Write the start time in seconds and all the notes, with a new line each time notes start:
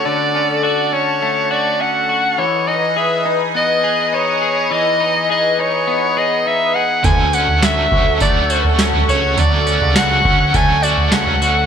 Already playing: A3 C#4 F#4 A4 F#5 A5
0.05 D3 D5
0.35 C#4
0.63 F#4 D5
0.92 C#4 C#5
1.22 A3
1.51 F#4 D5
1.80 C#4 F#5
2.09 F#4
2.37 E3 B4 C#5 D#5 G#5 D#6
2.67 D#4 D#5
2.96 G#4 E5
3.25 D#4
3.55 B3 D#5
3.84 G#4
4.13 D#4 C#5
4.42 G#4
4.71 E3 D#5
5.00 D#4
5.30 G#4 D#5
5.59 D#4 C#5
5.87 B3
6.17 G#4 D#5
6.46 D#4 E5
6.75 G#4 F#5
7.03 D2 D3 F#3 A3 C#4 F#4 A4 F#5 G#5 C#6, kick, floor tom, tambourine
7.32 A3 C#4 F#4 F#5, tambourine
7.48 floor tom
7.61 D3 F#3 A3 C#4 F#4 E5, snare, tambourine
7.90 D2 A3 C#4 F#4, kick
8.19 D2 F#3 A3 C#4 F#4 D5, kick, floor tom, tambourine
8.48 A3 C#4 F#4, tambourine
8.65 floor tom
8.78 D3 F#3 A3 C#4 F#4, snare, tambourine
8.93 floor tom
9.07 C#2 A3 C#4 F#4 C#5, tambourine
9.36 D2 D3 F#3 A3 C#4 F#4 D5, floor tom, tambourine
9.65 A3 C#4 F#4, tambourine
9.81 C#2, floor tom
9.93 D3 F#3 A3 C#4 F#4 F#5, snare, tambourine
10.23 D2 A3 C#4 F#4, kick
10.52 D2 F#3 A3 C#4 F#4 G#5, kick, floor tom, tambourine
10.82 A3 C#4 F#4 D5, tambourine
10.98 floor tom
11.11 C#2 D3 F#3 A3 C#4 F#4 F#5, snare, tambourine
11.27 floor tom
11.39 D2 A3 C#4 F#4, tambourine